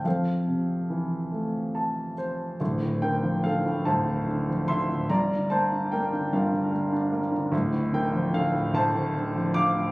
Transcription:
<<
  \new Staff \with { instrumentName = "Grand piano" } { \time 6/8 \key f \major \tempo 4. = 48 << { <a' c'' f''>2~ <a' c'' f''>8 r8 | \key d \minor r8 <bes' g''>8 <a' f''>8 <c'' a''>4 <e'' c'''>8 | <d'' bes''>8 <c'' a''>8 <bes' g''>8 <bes' f''>4 r8 | r8 <bes' g''>8 <a' f''>8 <c'' a''>4 <f'' d'''>8 | } \\ { r2 a''8 c''8 | r2. | r2. | r2. | } >> }
  \new Staff \with { instrumentName = "Grand piano" } { \clef bass \time 6/8 \key f \major f,8 c8 e8 a4. | \key d \minor <d,, d,>16 a,16 d16 f16 d16 a,16 <d,, d,>16 a,16 d16 f16 d16 a,16 | <g,, g,>16 d16 bes16 d'16 bes16 d16 <g,, g,>16 d16 bes16 d'16 bes16 d16 | <d,, d,>16 a,16 d16 f16 d16 a,16 <d,, d,>16 a,16 d16 f16 d16 a,16 | }
>>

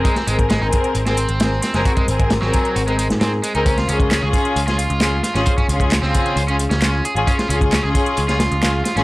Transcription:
<<
  \new Staff \with { instrumentName = "String section" } { \time 4/4 \key des \major \tempo 4 = 133 r8 <c' aes' bes'>8. <c' aes' bes'>4 <c' aes' bes'>16 r8 <c' aes' bes'>16 r8 <c' aes' bes'>16 | r8 <c' aes' bes'>8. <c' aes' bes'>4 <c' aes' bes'>16 r8 <c' aes' bes'>16 r8 <c' aes' bes'>16 | r8 <des' f' aes'>8. <des' f' aes'>4 <des' f' aes'>16 r8 <des' f' aes'>16 r8 <des' f' aes'>16 | r8 <des' f' aes'>8. <des f' aes'>4 <des' f' aes'>16 r8 <des' f' aes'>16 r8 <des' f' aes'>16 |
r8 <des' f' aes'>8. <des' f' aes'>4 <des' f' aes'>16 r8 <des' f' aes'>16 r8 <des' f' aes'>16 | }
  \new Staff \with { instrumentName = "Overdriven electric guitar" } { \time 4/4 \key des \major aes16 c'16 aes16 r16 aes16 ees'16 r8. c'16 c'4 c'16 aes16 | ges'16 aes16 r8. ges8. ges'16 aes16 aes16 r16 c'16 r16 aes16 ees'16 | des'16 f'16 des'16 r16 des'16 aes'16 r8. f'16 f'4 f'16 des'16 | c''16 des'16 r8. c'8. c''16 des'16 r16 des'8. aes'16 r16 |
des'16 f'16 des'16 r16 des'16 aes'16 r8. f'16 f'4 f'16 des'16 | }
  \new Staff \with { instrumentName = "Picked electric bass" } { \clef bass \time 4/4 \key des \major r8 aes,,8. aes,,16 r8 aes,,8. aes,,8. r16 ges,,16 | r8 aes,,8. aes,,16 r8 aes,,8. aes,8. r16 des,16~ | des,8 des,8. des,16 r8 des,8. des,8. r16 aes,,16 | r8 des,8. des,16 r8 des,8. des,8. r16 aes,,16 |
r8 des,8. des,16 r8 des,8. des,8. r16 aes,,16 | }
  \new DrumStaff \with { instrumentName = "Drums" } \drummode { \time 4/4 <hh bd>16 <hh sn>16 hh16 <hh bd>16 <hh sn>8 <hh bd>16 hh16 hh16 <hh sn>16 hh16 hh16 <hh sn>8 <hh sn>16 <hh sn>16 | <hh bd>16 <hh bd>16 hh16 <hh bd>16 <hh sn>16 sn16 <hh bd>16 hh16 hh16 hh16 hh16 <hh sn>16 <hh sn>8 hh16 hh16 | <hh bd>16 <hh sn>16 hh16 <hh bd>16 <hc hh sn>8 <hh bd>16 hh16 hh16 <hh sn>16 hh16 hh16 <hc hh sn>8 <hh sn>16 <hh sn>16 | <hh bd>16 <hh bd>16 hh16 <hh bd>16 <hc hh sn>16 sn16 <hh bd>16 hh16 hh16 hh16 hh16 <hh sn>16 <hc hh sn>8 hh16 hh16 |
<hh bd>16 <hh sn>16 hh16 <hh bd>16 <hc hh sn>8 <hh bd>16 hh16 hh16 <hh sn>16 <hh sn>16 hh16 <hc hh sn>8 <hh sn>16 <hh sn>16 | }
>>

